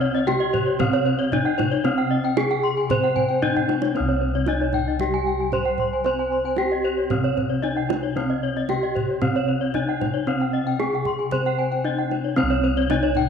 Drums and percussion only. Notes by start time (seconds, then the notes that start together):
0.14 kendang slap
0.28 kendang high
0.54 kendang low
0.80 kendang low
1.32 kendang low
1.59 kendang high, kendang low
1.84 kendang high
1.98 kendang slap
2.24 kendang slap
2.37 kendang high
2.51 kendang slap
2.77 kendang slap
2.90 kendang low
3.04 kendang slap
3.16 kendang low
3.30 kendang slap
3.42 kendang low
3.57 kendang low
3.69 kendang high
3.82 kendang high
3.96 kendang high
4.35 kendang slap
4.46 kendang high
4.73 kendang low
4.99 kendang low
5.52 kendang low
5.78 kendang low
6.04 kendang high
6.44 kendang slap
6.56 kendang high
7.10 kendang low
7.37 kendang low
7.90 kendang high
8.17 kendang high
8.56 kendang slap
8.69 kendang high
8.96 kendang low
9.22 kendang low
9.74 kendang low
10.01 kendang high, kendang low
10.40 kendang slap
10.67 kendang slap
10.80 kendang high
10.93 kendang slap
11.05 kendang low
11.20 kendang slap
11.31 kendang low
11.46 kendang slap
11.72 kendang slap
11.98 kendang slap
12.11 kendang high
12.37 kendang high
12.77 kendang slap
12.90 kendang high
13.15 kendang low